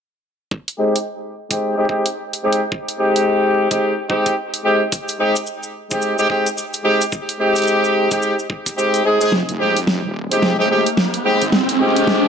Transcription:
0.51 kick
0.68 closed hi-hat
0.79 G#3 C4 D#4 G4
0.96 closed hi-hat
1.51 G#3 C4 D#4 G4, kick, closed hi-hat
1.78 G#3 C4 D#4 G4
1.89 G#3 C4 D#4 G4, kick
2.06 closed hi-hat
2.33 closed hi-hat
2.44 G#3 C4 D#4 G4
2.53 closed hi-hat
2.72 kick
2.88 closed hi-hat
2.99 G#3 C4 D#4 G4
3.16 closed hi-hat
3.71 G#3 C4 D#4 G4, kick, closed hi-hat
4.09 G#3 C4 D#4 G4, kick
4.26 kick, closed hi-hat
4.54 closed hi-hat
4.64 G#3 C4 D#4 G4
4.92 kick, closed hi-hat, cabasa
5.08 closed hi-hat, cabasa
5.19 G#3 C4 D#4 G4
5.36 closed hi-hat, cabasa
5.47 cabasa
5.63 cabasa
5.91 G#3 C4 D#4 G4, kick, closed hi-hat, cabasa
6.02 cabasa
6.18 G#3 C4 D#4 G4, cabasa
6.29 G#3 C4 D#4 G4, kick
6.46 closed hi-hat, cabasa
6.58 cabasa
6.74 closed hi-hat, cabasa
6.84 G#3 C4 D#4 G4
7.01 closed hi-hat, cabasa
7.12 kick, cabasa
7.29 closed hi-hat, cabasa
7.40 G#3 C4 D#4 G4
7.56 closed hi-hat, cabasa
7.58 closed hi-hat
7.62 closed hi-hat
7.64 closed hi-hat, cabasa
7.84 cabasa
8.11 G#3 C4 D#4 G4, kick, closed hi-hat, cabasa
8.22 cabasa
8.39 cabasa
8.50 kick
8.66 kick, closed hi-hat, cabasa
8.77 G#3 C4 D#4 G4, cabasa
8.94 closed hi-hat, cabasa
9.04 G#3 C4 D#4 G#4
9.21 G#3 C4 D#4 G#4, closed hi-hat, cabasa
9.32 F1, snare, riser
9.49 F1, closed hi-hat
9.60 G#3 C4 D#4 G4
9.77 closed hi-hat
9.87 snare
10.04 D#1
10.31 G#3 C4 D#4 G4, closed hi-hat
10.42 F1, snare
10.59 D#1 G#3 C4 D#4 G4
10.70 G#3 C4 D#4 G4
10.86 closed hi-hat
10.97 snare
11.14 closed hi-hat
11.25 G#3 C4 D#4 G4
11.41 G#1, closed hi-hat
11.52 F1, snare
11.69 F1, closed hi-hat
11.80 G#3 C4 D#4 G4
11.96 closed hi-hat
12.07 snare
12.24 D#1

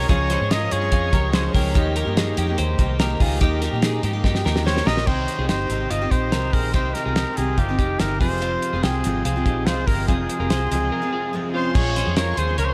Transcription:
0.09 C#2 C#3 F3 G#3 C#4 F4 G#4 C#5 C#6, kick, closed hi-hat
0.30 G#4 C5, snare, closed hi-hat
0.40 G#2 G#3 C#4 G#4
0.51 F4 A#4 D#5 D#6, snare, closed hi-hat
0.71 G2 F4 G#4 C#5 C#6, closed hi-hat
0.81 G#3 C#4 G#4
0.92 F2 F4 G#4, kick, closed hi-hat
1.12 C#2 F3 G#3 C#4 G4 G#4 A#4, kick, closed hi-hat
1.33 F3 G#3 C#4 G#4 C5, snare, closed hi-hat
1.53 C#2 F3 G#3 C#4 G4 G#4 A#4, kick, open hi-hat
1.74 D#2 D#3 A#3 D#4 G4, kick, closed hi-hat
1.96 G4 A#4, closed hi-hat
2.05 G2 A#3 D#4 G4
2.17 D#4 G#4, snare, closed hi-hat
2.37 F2 D#4 G4, closed hi-hat
2.47 A#3 D#4 G4
2.58 D#2 G4 C5, closed hi-hat
2.78 C2 D#3 A#3 D#4 G4, kick, closed hi-hat
2.99 D#3 A#3 D#4 G4 A#4, snare, closed hi-hat
3.20 C#2 D#3 A#3 D#4 F4 G4 G#4, kick, open hi-hat
3.41 D#2 D#3 A#3 D#4 G4, kick, closed hi-hat
3.62 G4 A#4, snare, closed hi-hat
3.72 A#2 A#3 D#4 G4
3.82 D#4 G#4, snare, closed hi-hat
4.03 G#2 D#4 G4, closed hi-hat
4.13 A#3 D#4 G4
4.24 G2 D#4 G4, kick, snare
4.35 snare
4.44 D#2 D#3 A#3 D#4 G4 A#4, snare
4.56 snare
4.65 D#3 A#3 D#4 G4 C5 C#5, snare
4.77 snare
4.86 A#1 D#3 A#3 D#4 G4 A#4 D#5, snare
4.97 snare
5.07 C2 C3 D#3 C4 D#4 G4 C5, kick, crash
5.28 closed hi-hat
5.38 C2 C4 D#4 F4 G4 G#4
5.49 G1 D#4 G4 C5, snare, closed hi-hat
5.70 G#1 C3 D#3 C4 D#4 G4, closed hi-hat
5.90 G1 C4 F4 D#5, closed hi-hat
6.01 C3 D#3 C4 D#4 G4
6.11 A#1 D#4 G4 C5, kick, closed hi-hat
6.32 C2 C3 D#3 C4 D#4 G4 A#4, snare, closed hi-hat
6.53 A#1 G#4 A#4 C5, kick, open hi-hat
6.74 C2 C3 D#3 C4 D#4 G4 C5, kick, closed hi-hat
6.94 A#4, snare, closed hi-hat
7.05 C2 C4 D#4 F4 G4 G#4
7.16 D#4 G4, snare, closed hi-hat
7.37 C2 C3 D#3 C4 D#4 G4 G#4, closed hi-hat
7.58 G1 C4 F4 G4, kick, closed hi-hat
7.68 C3 D#3 C4 D#4 G4
7.79 F1 D#4 G4, kick, closed hi-hat
7.99 G1 C3 D#3 C4 D#4 G4 A#4, snare, closed hi-hat
8.20 F1 F2 C3 F3 G#3 C4 F4 G#4 C5, kick, open hi-hat
8.42 C4 F4, closed hi-hat
8.62 closed hi-hat
8.73 F1 F3 G#3 C4 F4 G#4
8.83 C2 C4 G#4 G5, snare, closed hi-hat
9.04 G#1 F2 C3 F3 G#3 C4 F4, closed hi-hat
9.24 C2 C4 F4 G#4, closed hi-hat
9.36 F2 C3 F3 G#3 C4 F4
9.46 A#1 D#4 G4, kick, closed hi-hat
9.66 C2 F2 C3 F3 G#3 C4 F4 G#4 C5, snare, closed hi-hat
9.87 G1 G4 A#4, kick, open hi-hat
10.08 F1 F2 C3 F3 G#3 C4 F4 G#4, kick, closed hi-hat
10.29 closed hi-hat
10.39 F1 F3 G#3 C4 F4 G4 A#4
10.50 C2 G#4 C5, snare, closed hi-hat
10.71 C#2 F2 C3 F3 G#3 C4 F4, closed hi-hat
10.92 F4 A#4
11.02 F2 C3 F3 G#3 C4 F4
11.13 F4 G#4
11.33 F2 C3 F3 G#3 C4 F4
11.54 C#4 F4 C5 C6
11.74 A#1 A#2 F3 G#3 C#4 F4 G#4 C#5 C#6, kick, crash
11.96 G#4 C5, snare, hi-hat pedal, open hi-hat
12.06 F2 G#3 C#4 G#4
12.17 F4 A#4 C#5 C#6, snare, hi-hat pedal, open hi-hat
12.37 D#2 F4 G#4 C5 C6, hi-hat pedal, open hi-hat
12.47 G#3 C#4 G#4
12.58 C#2 A#4 C#5 A#5, hi-hat pedal, open hi-hat
12.65 C5 C6

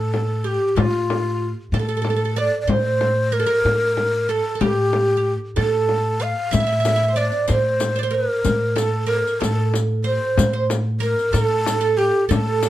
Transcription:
Already playing: A2 A4
0.14 frame drum
0.44 G4
0.69 G4
0.76 A2 F4, frame drum
1.10 frame drum
1.72 A2 A4, frame drum
1.79 A4
1.89 A4
1.97 A4
2.02 A4, frame drum
2.10 A4
2.16 A4
2.25 A4
2.36 D5
2.61 D5
2.67 A2 C5, frame drum
3.01 frame drum
3.32 A#4
3.40 A4
3.46 A#4
3.65 A2, frame drum
3.97 frame drum
4.29 A4
4.55 A4
4.61 A2 G4, frame drum
4.93 frame drum
5.17 G4
5.56 A2 A4, frame drum
5.89 frame drum
6.20 F5
6.51 A2 E5, riq, frame drum
6.60 E5
6.67 E5
6.73 E5
6.80 E5
6.85 E5, riq, frame drum
6.96 E5
7.03 E5
7.08 C5
7.16 D5, riq
7.32 riq
7.48 A2 C5, riq, frame drum
7.80 riq, frame drum
7.96 C5 D5
8.03 C5
8.11 A#4
8.15 A#4
8.44 A2, riq, frame drum
8.76 A4, riq, frame drum
9.07 A#4
9.11 riq
9.27 riq
9.41 A2 A4, riq, frame drum
9.74 riq, frame drum
10.04 C5
10.37 A2, riq, frame drum
10.53 C5
10.70 riq, frame drum
11.00 A#4, riq
11.19 riq
11.33 A2 A4 A#4, riq, frame drum
11.44 A4
11.66 riq, frame drum
11.81 A4
11.97 G4
12.29 A2 A4, riq, frame drum
12.63 riq, frame drum

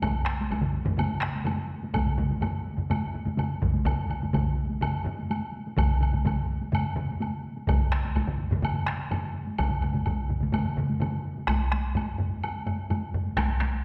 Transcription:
0.02 taiko, taiko low-mid, taiko mid, taiko high, high woodblock
0.26 taiko rim, high woodblock
0.41 taiko high
0.51 taiko, taiko high, high woodblock
0.61 taiko low-mid, taiko mid
0.85 taiko low-mid, taiko mid, taiko high
0.97 taiko low-mid, taiko mid, taiko high, high woodblock
1.21 taiko rim
1.36 taiko high
1.45 taiko low-mid, taiko mid, taiko high, high woodblock
1.83 taiko high
1.94 taiko, taiko low-mid, taiko mid, taiko high, high woodblock
2.06 taiko low-mid, taiko mid
2.17 taiko low-mid, taiko mid, taiko high
2.31 taiko high
2.41 taiko low-mid, taiko mid, taiko high, high woodblock
2.77 taiko low-mid, taiko mid
2.90 taiko low-mid, taiko mid, taiko high, high woodblock
3.14 taiko low-mid, taiko mid
3.25 taiko low-mid, taiko mid, taiko high
3.37 taiko low-mid, taiko mid, taiko high, high woodblock
3.62 taiko, taiko low-mid, taiko mid
3.74 taiko high
3.85 taiko, taiko low-mid, taiko mid, taiko high, high woodblock
4.10 taiko low-mid, taiko mid, high woodblock
4.22 taiko low-mid, taiko mid, taiko high
4.33 taiko, taiko low-mid, taiko mid, taiko high, high woodblock
4.71 taiko high
4.81 taiko low-mid, taiko mid, taiko high, high woodblock
5.04 taiko low-mid, taiko mid
5.19 taiko high
5.31 taiko high, high woodblock
5.67 taiko high
5.77 taiko, taiko low-mid, taiko mid, taiko high, high woodblock
6.01 taiko low-mid, taiko mid, high woodblock
6.13 taiko low-mid, taiko mid, taiko high
6.25 taiko, taiko low-mid, taiko mid, taiko high, high woodblock
6.62 taiko high
6.72 taiko low-mid, taiko mid, taiko high, high woodblock
6.96 taiko low-mid, taiko mid
7.10 taiko high
7.20 taiko high, high woodblock
7.57 taiko high
7.67 taiko, taiko low-mid, taiko mid, taiko high, high woodblock
7.92 taiko rim, high woodblock
8.05 taiko high
8.16 taiko, taiko high, high woodblock
8.27 taiko low-mid, taiko mid
8.51 taiko low-mid, taiko mid, taiko high
8.62 taiko low-mid, taiko mid, taiko high, high woodblock
8.87 taiko rim
9.00 taiko high
9.11 taiko low-mid, taiko mid, taiko high, high woodblock
9.47 taiko high
9.58 taiko, taiko low-mid, taiko mid, taiko high, high woodblock
9.70 taiko low-mid, taiko mid
9.82 taiko low-mid, taiko mid, taiko high, high woodblock
9.93 taiko low-mid, taiko mid, taiko high
10.06 taiko, taiko low-mid, taiko mid, taiko high, high woodblock
10.30 taiko low-mid, taiko mid
10.41 taiko low-mid, taiko mid, taiko high
10.52 taiko low-mid, taiko mid, taiko high, high woodblock
10.64 taiko low-mid, taiko mid
10.77 taiko low-mid, taiko mid
10.90 taiko high
11.01 taiko low-mid, taiko mid, taiko high, high woodblock
11.38 taiko high
11.48 taiko rim, taiko, taiko high, high woodblock
11.61 taiko high
11.72 taiko rim, taiko high
11.85 taiko high
11.95 taiko low-mid, taiko high, high woodblock
12.08 taiko high
12.18 taiko low-mid, taiko high
12.44 taiko high, high woodblock
12.56 taiko high
12.66 taiko low-mid, taiko high, high woodblock
12.78 taiko high
12.90 taiko low-mid, taiko high, high woodblock
13.02 taiko high
13.14 taiko low-mid
13.26 taiko high
13.37 taiko rim, taiko, taiko high, high woodblock
13.50 taiko high
13.60 taiko rim, taiko high
13.73 taiko high

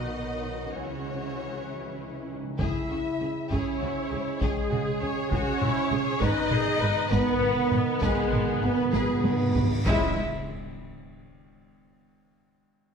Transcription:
Already playing: B1 B2 D#3 F#3 B3 D#4 F#4 B4 D#5
0.74 C#2 C#3 E3 G#3 C#4 E4 G#4 C#5
0.83 C#3
0.90 C#3
1.06 C#3
1.13 C#3
1.21 C#3
1.28 C#3
1.43 C#3
1.59 C#3
1.66 C#3 E4 F#4
1.74 C#3
1.82 C#3
1.89 C#3
1.97 C#3 E4
2.05 C#3
2.13 C#3
2.21 C#3
2.28 C#3 D#4
2.36 C#3
2.43 C#3
2.50 C#3
2.59 C#2 C#3 G#3 E4 G#4 E5, taiko
2.90 C#2 C#3 F#4
3.20 C#2 C#3 G#4
3.51 C#2 C#3 C#4 E4 G#4 C#5, taiko
3.80 C#2 C#3 F#4
4.10 C#2 C#3 G#4
4.41 C#2 C#3 G#3 G#4, taiko
4.70 C#2 C#3 F#4, taiko mid
5.01 C#2 C#3 C#4 G#4 C#5
5.31 C#2 C#3 C#4 F#4 G#4 C#5, taiko
5.61 C#2 C#3 E4 F#4, taiko mid
5.91 C#2 C#3 G#4, taiko mid
6.20 G#1 G#2 D#3 B3 D#4 B4 D#5, taiko
6.43 G#2
6.51 G#1 G#2 G#4 A#4, taiko mid
6.59 G#2
6.66 G#2
6.74 G#2
6.80 G#1 G#2 B4
6.89 G#2
6.96 G#2
7.04 G#2
7.11 G#1 G#2 B3 B4, taiko
7.27 G#2
7.33 G#2
7.40 G#1 G#2 A#4, taiko mid
7.48 G#2
7.56 G#2
7.64 G#2
7.71 G#1 G#2 B4, taiko mid
7.79 G#2
7.86 G#2
7.94 G#2
8.01 G#1 G#2 G#3 G#4 B4, taiko, cymbal swell
8.08 G#2
8.16 G#2
8.23 G#2
8.31 G#1 G#2 A#4, taiko mid
8.39 G#2
8.46 G#2
8.54 G#2
8.62 G#1 G#2 B3 B4
8.69 G#2
8.76 G#2
8.85 G#2
8.92 G#1 G#2 B3 G#4 B4, taiko high
8.98 G#2
9.06 G#2
9.14 G#2
9.21 G#1 G#2 A#4, taiko high
9.26 G#2
9.36 G#2
9.44 G#2
9.51 G#2, taiko low
9.55 G#1 G#2 B4
9.59 G#2
9.67 G#2
9.75 G#2
9.86 C#2 C#3 G#3 E4 E5, taiko, impact

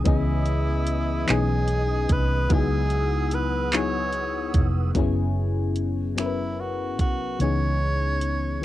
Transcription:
Already playing: D#6
0.04 C#2 E3 B3 C#4 E4 G#4 B4 D#5, kick, closed hi-hat
0.46 closed hi-hat
0.87 closed hi-hat
1.26 B1 E3 B3 C#4 D#4 G#4, clap, closed hi-hat
1.30 G#4
1.68 closed hi-hat
2.09 C2 B4, kick, closed hi-hat
2.49 C#2 F#3 B3 D#4 E4 B4 F#5 E6, kick, closed hi-hat
2.53 G#4
2.90 closed hi-hat
3.31 B4, closed hi-hat
3.72 F#3 B3 D#4 E4 G#4 C#5, clap, closed hi-hat
4.12 closed hi-hat
4.54 F1, kick, closed hi-hat
4.94 F#1 F#3 A#3 C#4 E4 G#4, kick, closed hi-hat
5.01 B3
5.76 closed hi-hat
6.15 F#3 B3 C#4 E4, finger snap, closed hi-hat
6.20 E4 A#4
6.26 B4
6.61 F#4
6.99 C2 F#4, kick, closed hi-hat
7.39 C#2 E3 B3 C#4 D#4 C#5, closed hi-hat
7.43 G#4
8.21 closed hi-hat
8.61 E3

